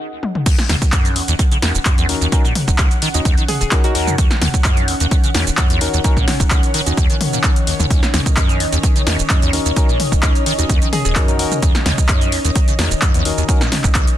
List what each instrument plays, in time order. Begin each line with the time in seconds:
Already playing: tine electric piano C#4 D#4 F#4 A#4
0.23 high tom
0.35 mid tom
0.46 acid bass D#2, analog synth pad D#3 C#4 F#5, kick, closed hi-hat, crash, shaker
0.58 snare, shaker
0.69 acid bass D#2, snare, open hi-hat, mid tom
0.82 kick, closed hi-hat, shaker
0.92 acid bass F#2, kick, clap, closed hi-hat, shaker
1.01 ambient pad C#5, closed hi-hat
1.05 shaker
1.16 acid bass D#2, open hi-hat
1.28 acid bass D#2, closed hi-hat, shaker
1.39 acid bass D#3, kick, closed hi-hat, shaker
1.52 acid bass C#3, closed hi-hat, shaker
1.62 acid bass E2, tine electric piano C#4 D#4 F#4 A#4, snare, open hi-hat
1.75 acid bass D#1, shaker
1.85 acid bass F#2, kick, clap, closed hi-hat, shaker
1.98 acid bass E2, closed hi-hat, shaker
2.09 acid bass D#2, tine electric piano C#4 D#4 F#4 A#4, open hi-hat
2.21 acid bass D#2, shaker
2.32 acid bass D#3, tine electric piano C#4 D#4 F#4 A#4, kick, closed hi-hat, shaker
2.45 acid bass A#2, shaker
2.55 open hi-hat, mid tom
2.68 acid bass D#1, kick, closed hi-hat, shaker
2.78 acid bass C#2, kick, clap, closed hi-hat, shaker
2.91 closed hi-hat, shaker
3.02 acid bass D#3, open hi-hat
3.14 acid bass D#2, tine electric piano C#4 D#4 F#4 D#5, closed hi-hat, shaker
3.25 acid bass D#2, kick, closed hi-hat, shaker
3.38 acid bass D#3, closed hi-hat, shaker
3.48 synth pluck G#4, open hi-hat, mid tom
3.61 acid bass D#1, synth pluck G#4, shaker
3.71 tine electric piano C#4 D#4 F#4 A#4, kick, clap, closed hi-hat, shaker
3.84 tine electric piano C#4 D#4 F#4 A#4, synth pluck F#4, closed hi-hat, shaker
3.95 acid bass D#2, tine electric piano C#4 D#4 F#4 A#4, synth pluck F#4, open hi-hat
4.07 acid bass F#2, mid tom, shaker
4.18 acid bass D#2, kick, closed hi-hat, shaker
4.31 snare, shaker
4.42 acid bass D#2, snare, open hi-hat, mid tom
4.54 kick, closed hi-hat, shaker
4.64 acid bass F#2, kick, clap, closed hi-hat, shaker
4.77 closed hi-hat, shaker
4.88 acid bass D#2, open hi-hat
5.00 acid bass D#2, closed hi-hat, shaker
5.11 acid bass D#3, kick, closed hi-hat, shaker
5.24 acid bass C#3, closed hi-hat, shaker
5.35 acid bass E2, tine electric piano C#4 D#4 F#4 A#4, snare, open hi-hat
5.47 acid bass D#1, shaker
5.57 acid bass F#2, kick, clap, closed hi-hat, shaker
5.70 acid bass E2, closed hi-hat, shaker
5.81 acid bass D#2, tine electric piano C#4 D#4 F#4 A#4, open hi-hat
5.94 acid bass D#2, shaker
6.04 acid bass D#3, tine electric piano C#4 D#4 F#4 A#4, kick, closed hi-hat, shaker
6.17 acid bass A#2, kick, shaker
6.28 snare, open hi-hat, mid tom
6.40 acid bass D#1, kick, closed hi-hat, shaker
6.50 acid bass C#2, kick, clap, closed hi-hat, shaker
6.63 closed hi-hat, shaker
6.74 acid bass D#3, open hi-hat
6.86 acid bass D#2, tine electric piano C#4 D#4 F#4 D#5, closed hi-hat, shaker
6.97 acid bass D#2, kick, closed hi-hat, shaker
7.10 acid bass D#3, closed hi-hat, shaker
7.21 open hi-hat, mid tom
7.33 acid bass A#2, shaker
7.43 acid bass D#3, kick, clap, closed hi-hat, shaker
7.56 closed hi-hat, shaker
7.67 acid bass D#2, open hi-hat
7.80 acid bass D#2, mid tom, shaker
7.90 acid bass D#2, analog synth pad D#5, kick, closed hi-hat, shaker
8.03 snare, shaker
8.14 acid bass D#2, snare, open hi-hat, mid tom
8.26 kick, closed hi-hat, shaker
8.37 acid bass F#2, kick, clap, closed hi-hat, shaker
8.49 closed hi-hat, shaker
8.60 acid bass D#2, open hi-hat
8.73 acid bass D#2, closed hi-hat, shaker
8.83 acid bass D#3, kick, closed hi-hat, shaker
8.96 acid bass C#3, closed hi-hat, shaker
9.07 acid bass E2, tine electric piano C#4 D#4 F#4 A#4, snare, open hi-hat
9.19 acid bass D#1, shaker
9.30 acid bass F#2, kick, clap, closed hi-hat, shaker
9.42 acid bass E2, closed hi-hat, shaker
9.53 acid bass D#2, tine electric piano C#4 D#4 F#4 A#4, open hi-hat
9.66 acid bass D#2, shaker
9.76 acid bass D#3, tine electric piano C#4 D#4 F#4 A#4, kick, closed hi-hat, shaker
9.89 acid bass A#2, shaker
10.00 open hi-hat, mid tom
10.12 acid bass D#1, kick, closed hi-hat, shaker
10.23 acid bass C#2, kick, clap, closed hi-hat, shaker
10.35 closed hi-hat, shaker
10.46 acid bass D#3, open hi-hat
10.58 acid bass D#2, tine electric piano C#4 D#4 F#4 D#5, closed hi-hat, shaker
10.69 acid bass D#2, kick, closed hi-hat, shaker
10.82 acid bass D#3, closed hi-hat, shaker
10.93 synth pluck G#4, open hi-hat, mid tom
11.05 acid bass D#1, synth pluck G#4, shaker
11.16 acid bass F#2, tine electric piano C#4 D#4 F#4 A#4, kick, clap, closed hi-hat, shaker
11.28 tine electric piano C#4 D#4 F#4 A#4, closed hi-hat, shaker
11.39 acid bass D#2, tine electric piano C#4 D#4 F#4 A#4, open hi-hat
11.52 mid tom, shaker
11.63 acid bass D#2, kick, closed hi-hat, shaker
11.75 snare, shaker
11.86 acid bass D#2, snare, open hi-hat, mid tom
11.98 kick, closed hi-hat, shaker
12.09 acid bass F#2, kick, clap, closed hi-hat, shaker
12.21 closed hi-hat, shaker
12.32 acid bass D#2, open hi-hat
12.45 acid bass D#2, closed hi-hat, shaker
12.55 acid bass D#3, kick, closed hi-hat, shaker
12.68 acid bass C#3, closed hi-hat, shaker
12.79 acid bass E2, tine electric piano C#4 D#4 F#4 A#4, snare, open hi-hat
12.91 acid bass D#1, shaker
13.02 acid bass F#2, kick, clap, closed hi-hat, shaker
13.14 acid bass E2, closed hi-hat, shaker
13.25 acid bass D#2, tine electric piano C#4 D#4 F#4 A#4, open hi-hat
13.38 acid bass D#2, shaker
13.49 acid bass D#3, tine electric piano C#4 D#4 F#4 A#4, kick, closed hi-hat, shaker
13.61 acid bass A#2, snare, shaker
13.72 snare, open hi-hat, mid tom
13.84 acid bass D#1, kick, clap, closed hi-hat, shaker
13.95 acid bass C#2, kick, clap, closed hi-hat, shaker
14.07 closed hi-hat, shaker